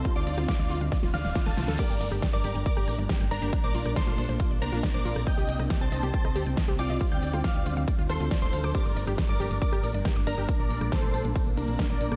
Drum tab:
CC |----------------|x---------------|----------------|----------------|
RD |----------------|x---x---x---x---|x---x---x---x---|x---x---x---x---|
HH |xxoxxxoxxxoxxxox|xxoxxxoxxxoxxxox|xxoxxxoxxxoxxxox|xxoxxxoxxxoxxxox|
TB |xxxxxxxxxxxxxxxx|xxxxxxxxxxxxxxxx|xxxxxxxxxxxxxxxx|xxxxxxxxxxxxxxxx|
SD |---ro---oooooooo|---ro----r--o---|---ro-------o--r|---ro----r--o---|
BD |o---o---o---o---|o---o---o---o---|o---o---o---o---|o---o---o---o---|

CC |----------------|----------------|----------------|
RD |x---x---x---x---|x---x---x---x---|x---x---x---x---|
HH |xxoxxxoxxxoxxxox|xxoxxxoxxxoxxxox|xxoxxxoxxxoxxxox|
TB |xxxxxxxxxxxxxxxx|xxxxxxxxxxxxxxxx|xxxxxxxxxxxxxxxx|
SD |---ro-------o--r|---ro----r--o---|---ro-------o--r|
BD |o---o---o---o---|o---o---o---o---|o---o---o---o---|